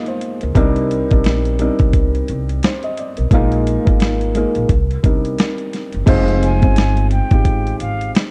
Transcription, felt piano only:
Already playing: G#3 A#3 D#4 F4 G4 G#4 A#4 D#5
0.08 C5
0.43 A#4
0.55 G3 C4 D4 D#4 A#4
1.10 G3 C4 D4 D#4 A#4
1.59 G3 C4 D4 D#4 A#4
2.64 C5
2.84 D#5
2.99 D5
3.18 A#4
3.32 G#3 A#3 D#4 F4 A#4
3.85 G#3 A#3 D#4 F4 A#4
4.35 G#3 A#3 D#4 F4 A#4
5.03 G3 C4 D4 D#4 A#4
6.06 G#3 C4 D#4 F4 C5
6.61 G#3 C4 D#4 F4 C5
7.31 G#3 C4 D#4 F4 G4

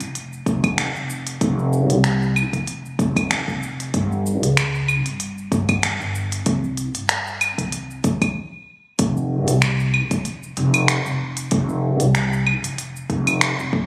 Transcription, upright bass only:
0.01 F1
0.46 F1
0.96 F1
1.41 F1
1.91 C2
2.53 F1
2.99 F1
3.48 F1
3.94 G1
4.43 C#2
5.06 G1
5.52 G1
6.00 G1
6.47 C2
6.95 G1
7.59 C2
8.04 A#1
8.99 F1
9.48 C2
10.11 F1
10.57 F1
11.06 F1
11.52 F1
12.01 C2
12.63 F1
13.10 F1
13.59 F1

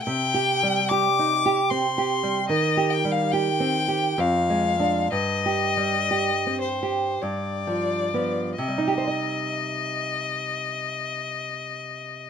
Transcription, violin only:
0.03 G5
0.89 D6
1.70 C6
2.49 D#5
2.90 G5
3.12 F5
3.32 G5
4.20 F5
5.13 D#5
6.62 C5
7.22 D5
8.56 D#5

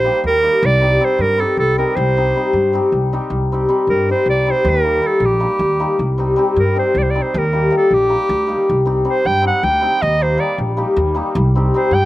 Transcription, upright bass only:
0.24 D#2
0.63 C2
1.19 G2
1.57 C2
1.97 C2
2.53 G2
2.92 C2
3.30 C2
3.87 G2
4.26 C2
4.65 D#2
5.20 A#1
5.59 D#2
5.99 C2
6.56 G2
6.95 C2
7.34 D#2
7.91 A#1
8.29 D2
8.69 C2
9.25 G2
9.63 D2
10.02 D#2
10.58 A#1
10.96 D#2
11.35 C2
11.91 G2

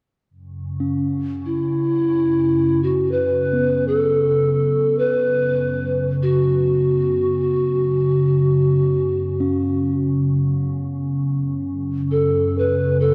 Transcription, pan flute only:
1.46 E4
2.83 F#4
3.11 B4
3.88 A4
4.98 B4
6.23 F#4
12.11 A4
12.59 B4
13.01 A4

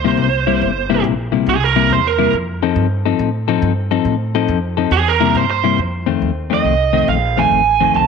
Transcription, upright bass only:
Already playing: D2
0.17 C2
0.62 G1
1.04 A#1
1.47 C2
1.90 E2
2.33 F2
2.76 G2
3.19 A2
3.62 G2
4.05 A2
4.48 F2
4.91 E2
5.35 G2
5.78 F2
6.22 D#2
6.64 C2
7.08 A#1
7.51 A1
7.94 C2

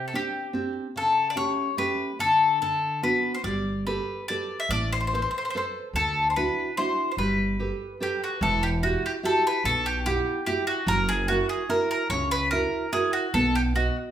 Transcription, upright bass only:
3.44 G1
4.69 A1
5.93 D2
7.17 G1
8.41 E1
9.64 B1
10.87 F#1
12.10 C#2
13.34 B1

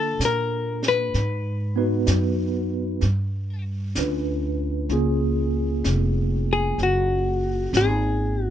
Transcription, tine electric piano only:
Already playing: A#3 D4 F4 A4
1.76 B3 D#4 F#4 B4
3.96 C#4 D4 F4 B4
4.91 A#3 C#4 F4 G#4

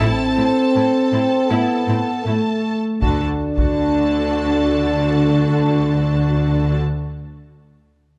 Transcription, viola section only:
0.00 E4
0.37 C4 E4
0.75 A3 E4
1.13 C4 E4
1.50 E4
1.89 C4 E4
2.26 A3 E4
3.02 F#4
3.58 F#4

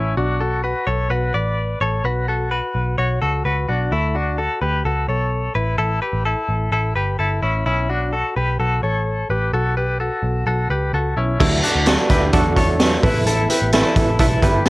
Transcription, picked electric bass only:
Already playing: A1
0.17 B1
0.87 B1
1.10 B1
1.35 A1
1.81 A1
2.04 B1
2.75 B1
2.98 B1
3.22 C#2
3.45 C#2
3.69 B1
3.91 D2
4.62 D2
4.85 C#2
5.08 B1
5.56 A1
5.79 A1
6.13 A1
6.49 A1
6.72 A1
6.95 G1
7.19 G1
7.42 A1
7.66 B1
8.36 B1
8.59 B1
8.83 A1
9.29 A1
9.53 B1
10.23 B1
10.46 B1
10.70 C#2
10.93 C#2
11.16 B1
11.40 D2
11.75 D2
12.10 D2
12.34 E2
12.57 E2
13.03 A1
13.26 A1
13.62 A1
13.96 A1
14.19 B1
14.43 G1

